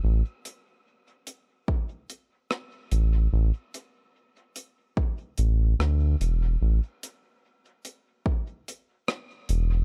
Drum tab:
HH |-x-x-x-x|-x-x-x-x|-x-x-x-x|
SD |------r-|------r-|------r-|
BD |----o---|----o---|----o---|